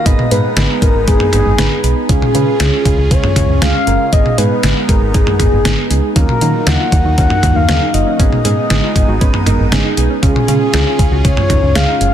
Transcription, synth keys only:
0.06 B3 D#4 G#4 B4
0.31 B3 D#4 G#4 B4
0.57 B3 D#4 G#4 B4
0.82 B3 D#4 G#4 B4
1.08 B3 D#4 G#4 B4
1.33 B3 D#4 G#4 B4
1.58 B3 D#4 G#4 B4
1.84 B3 D#4 G#4 B4
2.09 G#3 C#4 F4 G#4
2.35 G#3 C#4 F4 B4
2.60 G#3 C#4 F4 G#4
2.85 G#3 C#4 F4 G#4
3.11 G#3 C#4 F4 G#4
3.36 G#3 C#4 F4 G#4
3.62 G#3 C#4 F4 G#4
3.87 G#3 C#4 F4 A#4
4.12 G#3 B3 D#4 G#4
4.38 G#3 B3 D#4 G#4
4.63 G#3 B3 D#4 G#4
4.89 G#3 B3 D#4 G#4
5.14 G#3 B3 D#4 G#4
5.40 G#3 B3 D#4 G#4
5.65 G#3 B3 D#4 G#4
5.91 G#3 B3 D#4 G#4
6.16 F#3 A#3 D#4 F4
6.42 F#3 A#3 D#4 F4
6.67 F#3 A#3 D#4 F4
6.92 F#3 A#3 D#4 F4
7.18 F#3 A#3 D#4 F4
7.43 F#3 A#3 D#4 F4
7.69 F#3 A#3 D#4 G#4
7.94 F#3 A#3 D#4 F4
8.19 G#3 B3 D#4 G#4
8.45 G#3 B3 D#4 G#4
8.70 G#3 B3 D#4 G#4
8.95 G#3 B3 D#4 G#4
9.21 G#3 B3 D#4 B4
9.46 G#3 B3 D#4 A#4
9.72 G#3 B3 D#4 G#4
9.97 G#3 B3 D#4 G#4
10.22 G#3 C#4 F4 G#4
10.48 G#3 C#4 F4 G#4
10.74 G#3 C#4 F4 G#4
10.99 G#3 C#4 F4 G#4
11.25 G#3 C#4 F4 G#4
11.50 G#3 C#4 F4 G#4
11.75 G#3 C#4 F4 G#4
12.01 G#3 C#4 F4 G#4

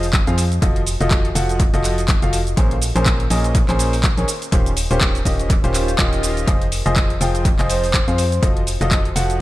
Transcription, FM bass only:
Already playing: F1
0.27 F2
0.62 F1
1.01 F1
1.35 F1
1.74 F1
2.22 F1
2.57 A#1
2.96 A#1
3.30 A#1
3.69 A#1
4.18 A#1
4.52 D#1
4.91 D#1
5.25 D#1
5.64 D#1
5.99 D#1
6.48 F1
6.86 F1
7.21 F1
7.59 F1
8.08 F2
8.43 F1
8.81 F1
9.16 F1

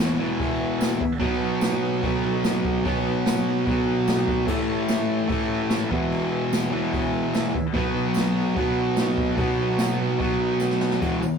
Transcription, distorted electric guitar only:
Already playing: E2 B2 E3
0.18 E2 B2 E3
1.19 B2 F#3
1.24 B3
2.02 B2 F#3
2.06 B3
2.83 B2 F#3
2.88 B3
3.65 B2 F#3
3.70 B3
4.46 A2 E3
4.51 A3
5.28 A2 E3
5.32 A3
5.90 E2 B2 E3
6.71 B2 E3
6.75 E2
7.74 B2 F#3 B3
8.55 B2 F#3
8.59 B3
9.37 B2 F#3
9.41 B3
10.18 B2 F#3 B3
11.01 E2 B2 E3
11.22 muted distorted electric guitar stroke

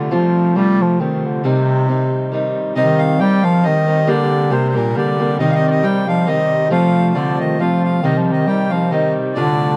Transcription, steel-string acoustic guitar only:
Already playing: D3 A3 D4 F4
0.11 F3 A3 C4 F4
0.56 F3 A3 C4 F4
0.99 F3 A3 C4 F4
1.44 C3 D#3 G3 C4 D#4
1.88 D#3 G3 C4 D#4
2.32 D#3 G3 C4 D#4
2.75 C3 D#3 G3 C4 D#4
3.19 D#3 G3 C4 D#4
3.42 D#3 G3 C4 D#4
3.63 D#3 G3 C4 D#4
3.86 D#3 G3 C4 D#4
4.07 G3 A#3 D4 G4
4.50 G3 A#3 D4 G4
4.74 G3 A#3 D4 G4
4.95 G3 A#3 D4 G4
5.18 G3 A#3 D4 G4
5.39 C3 D#3 G3 C4 D#4
5.82 D#3 G3 C4 D#4
6.06 D#3 G3 C4 D#4
6.27 D#3 G3 C4 D#4
6.70 F3 A3 C4 F4
7.15 F3 A3 C4 F4
7.59 F3 A3 C4 F4
8.03 C3 D#3 G3 C4 D#4
8.47 D#3 G3 C4 D#4
8.70 D#3 G3 C4 D#4
8.92 D#3 G3 C4 D#4
9.36 D2 A2 D3 A3 D4 F4

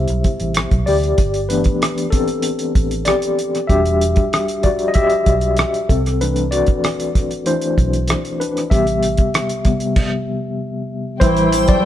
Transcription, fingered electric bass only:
0.10 B1
0.41 A1
0.72 B1
0.88 D2
1.18 G1
2.76 A1
3.70 E1
5.27 B1
5.90 C2
7.78 B1
8.72 A1
11.22 A1

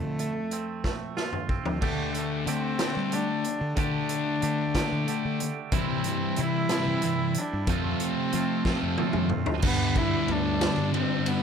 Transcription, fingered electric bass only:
0.02 D3
1.66 F3
1.82 D3
2.46 D3
2.97 G3
3.61 D3
3.77 D3
4.43 D3
4.92 D3
5.25 D3
5.72 C3
6.39 C3
6.87 E3
7.53 G2
7.67 F2
8.34 F3
8.82 F2
9.14 F2
9.63 G2
10.29 D2
10.77 G2

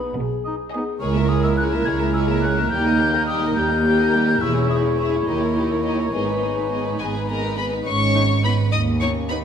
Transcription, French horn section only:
Already playing: B4
0.18 G#4
1.01 A#4
1.87 G#4
2.73 D#4
3.57 G4
4.41 G#4
5.28 A#4
6.14 B4
7.00 G#3 B4
7.29 A#3 A#4
7.57 B3 B4
7.86 C#4
8.44 B3
8.72 D#4
9.02 C#4
9.30 B3

